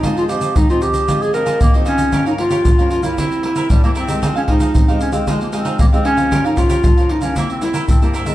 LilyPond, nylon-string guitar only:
\new Staff \with { instrumentName = "Nylon-string guitar" } { \time 4/4 \key f \minor \tempo 4 = 115 << { <f c' ees'>8 <f c' ees'>8 r16 <f c' ees'>8. <f c' ees'>16 r16 <f c' ees'>8 r16 <f c' ees'>8. | <f bes des'>16 r16 <f bes des'>8 r16 <f bes des'>8 <g bes e'>8. <g bes e'>8. <g bes e'>8 <aes ees' g'>16~ | <aes ees' g'>8 <aes ees' g'>8. <aes ees' g'>8 <aes ees' g'>8. <aes ees' g'>8 r16 <aes ees' g'>8 <f bes des'>16~ | <f bes des'>8 <f bes des'>8 r16 <f bes des'>8 <g bes e'>8. <g bes e'>8 r16 <g bes e'>8 <ees aes c'>16 | } \\ { aes,4 ees4 aes,4 ees4 | g,4 g,4 c4 g,4 | f4 c4 f4 c4 | g,4 g,4 c4 g,4 | } >> }